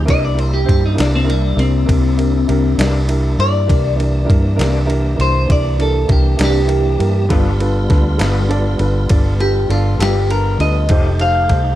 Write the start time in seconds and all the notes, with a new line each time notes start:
0.05 C2 C3 E3 A#3 D4 E4 G4 A#4, kick, ride
0.10 D#5
0.25 D5
0.34 D4 E4 G4 A#4
0.39 C5, ride
0.54 G4
0.65 G2 D4 E4 G4 C5, kick
0.69 G4, ride
0.86 D#4
0.94 D4 E4 G4 A#4, ride
0.99 C2 C3 E3 A#3 D4, snare
1.15 C4
1.24 D4 E4 G4 A#4
1.29 G3, ride
1.56 C2 C4 D4 E4 G4 A#4, ride
1.85 C2 D4 E4 G4 A#4, kick
1.89 ride
2.17 D4 E4 G4 A#4, ride
2.48 C2 D4 E4 G4 A#4, ride
2.78 C2 C3 E3 A#3 D4 E4 G4 A#4, snare, ride
3.07 D4 E4 G4 A#4, ride
3.38 G2 D4 E4 G4 A#4 D5, ride
3.66 C2 E3 A#3 D4 E4 G4 A#4, kick, ride
3.96 D4 E4 G4 A#4
4.00 ride
4.25 D4 E4 G4 A#4
4.30 G2, kick, ride
4.56 C2 D4 E4 G4 A#4, ride
4.60 C3 E3 A#3, snare
4.86 D4 E4 G4 A#4, ride
5.15 C2 D4 E4 G4 A#4
5.20 C5, ride
5.48 C2 D4 E4 G4 A#4 D5, kick, ride
5.79 D4 E4 G4 A4 A#4, ride
6.08 C2 D4 E4 G4 A#4, kick, ride
6.36 C2 D4 E4 G4 A#4, ride
6.41 C3 E3 A#3 G4, snare
6.67 D4 E4 G4 A#4, ride
6.98 G2 D4 E4 G4 A#4, ride
7.29 G1 G3 B3 D4 F4 A4 B4, kick, ride
7.60 D4 F4 A4 B4, ride
7.90 D2 D4 F4 A4 B4, kick, snare, ride
8.18 G1 G3 B3 D4 F4 A4 B4, snare, ride
8.48 D4 F4 A4 D5, ride
8.79 G1 D4 F4 A4 B4, ride
9.09 G1 D4 F4 A4 D5, kick, ride
9.40 D4 F4 G4 A4 B4, ride
9.69 G1 D4 F4 A4 D5, ride
9.99 G1 G3 B3 D4 F4 G4 A4 B4, snare, ride
10.29 D4 F4 A4 A#4 B4, ride
10.59 D2 D4 F4 A4 B4 D#5, ride
10.89 F1 F3 A3 D#4 G4 A4 C5, kick, ride
11.19 D#4 G4 A4 C5 F5, ride
11.49 C2 D#4 G4 A4 C5, kick, snare, ride